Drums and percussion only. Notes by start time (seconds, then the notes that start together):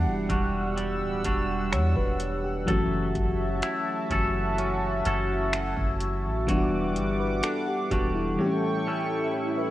0.29 kick, closed hi-hat
0.78 closed hi-hat
1.24 kick, closed hi-hat
1.73 finger snap, closed hi-hat
1.96 kick
2.20 closed hi-hat
2.68 kick, closed hi-hat
3.15 kick, closed hi-hat
3.62 finger snap, closed hi-hat
4.10 kick, closed hi-hat
4.58 closed hi-hat
5.05 closed hi-hat
5.53 finger snap, closed hi-hat
5.77 kick
6.01 closed hi-hat
6.49 kick, closed hi-hat
6.96 closed hi-hat
7.43 finger snap, closed hi-hat
7.91 kick, closed hi-hat